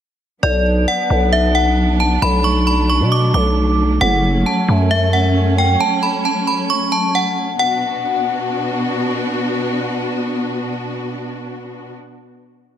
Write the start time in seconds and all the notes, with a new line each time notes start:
0.43 B1 F#3 B3 D4 D5
0.88 F#5
1.10 B1
1.33 E5
1.55 F#5
2.00 A5
2.22 B1 A3 B5
2.44 C#6
2.67 B5
2.90 C#6
3.01 B2
3.12 D6
3.34 B1 D6
4.01 F#1 C#4 F#5
4.46 A5
4.68 F#2
4.91 E5
5.13 F#5
5.58 G5
5.80 A5
6.03 B5
6.25 A5
6.47 B5
6.70 C#6
6.92 A5
7.15 F#5
7.59 B2 B3 D4 F#4 F#5